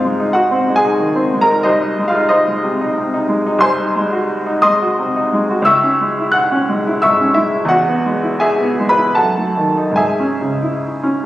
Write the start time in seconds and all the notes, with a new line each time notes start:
Already playing: G#2 C4 F4 F5
0.05 G#3
0.20 D#4
0.33 F#4 F#5
0.51 C4
0.68 G#3
0.76 G#4 G#5
0.85 D#4
1.00 D#3
1.15 C4
1.34 G#3
1.41 A#4 A#5
1.48 D#4
1.63 C2 D#4 C5 D#5
1.82 D#4
1.98 G#3
2.08 F4 F5
2.15 D#4
2.29 D#4 C5 D#5
2.48 G#3
2.64 C3
2.81 D#4
2.98 C3
3.14 D#4
3.29 G#3
3.46 D#4
3.58 C2 C5 G#5 C6
3.80 D#4
3.96 G#3
4.13 F#4
4.46 D#4
4.62 G#3 D#5 C6 D#6
4.82 F#4
4.99 C3
5.16 D#4
5.33 G#3
5.51 F#4
5.62 C#2 E6
5.66 E5 C#6
5.83 C#4
6.01 G#3
6.19 E4
6.32 F#5 F#6
6.52 C#4
6.69 G#3
6.87 E4
7.02 G#2 E5 C#6 E6
7.21 C#4
7.34 G#3 E4 E5
7.55 E4
7.65 E2 F#5
7.70 F#4
7.89 B3
8.06 G#3
8.23 E4
8.40 G#4 E5 G#5
8.60 B3
8.80 G#3
8.89 B4 B5
8.97 E4
9.15 F#2 A4 F#5 A5
9.38 A3
9.57 D#3
9.77 D#4
9.92 G#2
9.96 G#4 E5 G#5
10.20 C#4
10.41 C#3
10.62 E4
11.03 C#4